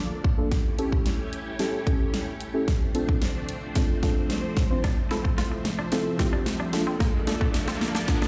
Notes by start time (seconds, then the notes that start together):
Already playing: F3 A#3 D4 F4 A4 D5
0.24 kick
0.38 A#3 D4 F4 A4
0.51 A3 C#4 E4 G4 C#5, kick, snare, closed hi-hat
0.78 C#4 E4 G4 A4, closed hi-hat
0.92 kick
1.06 snare, closed hi-hat
1.33 closed hi-hat
1.59 C#4 E4 G4 A4, snare, closed hi-hat
1.86 C#4 E4 G4 A4, kick, closed hi-hat
2.14 snare, closed hi-hat
2.41 closed hi-hat
2.54 C#4 E4 G4 A4
2.68 F3 C4 D4 C5, kick, snare, closed hi-hat
2.94 C4 D4 F4 A4, closed hi-hat
3.09 kick
3.22 snare, closed hi-hat
3.49 closed hi-hat
3.75 C4 D4 F4 A4, kick, snare, closed hi-hat
4.03 C4 D4 F4 A4, kick, snare, closed hi-hat
4.30 snare, closed hi-hat
4.57 kick, snare, closed hi-hat
4.70 C4 D4 F4 C5
4.84 D4 E5, kick, snare, closed hi-hat, riser
5.11 C4 E4 F4 A4, snare, closed hi-hat
5.24 muted clean electric guitar stroke, kick
5.38 F4, snare, closed hi-hat
5.52 muted clean electric guitar stroke
5.65 snare, closed hi-hat
5.79 D4
5.92 C4 E4 F4 A4, muted clean electric guitar stroke, snare, closed hi-hat
6.19 C4 E4 F4 G4, kick, snare, closed hi-hat
6.33 D4
6.46 snare, closed hi-hat
6.60 D4
6.73 A#3 D4 F4 A4 D5, muted clean electric guitar stroke, snare, open hi-hat
6.87 C4
7.00 A#3, kick, snare, closed hi-hat
7.27 A#3 D4 F4 A4, muted clean electric guitar stroke, snare, closed hi-hat
7.41 A3, kick
7.54 snare, closed hi-hat
7.68 C4, snare
7.81 muted clean electric guitar stroke, snare, closed hi-hat
7.95 D4, snare
8.08 A#3 D4 F4 A4, muted clean electric guitar stroke, kick, snare, closed hi-hat
8.22 D4, snare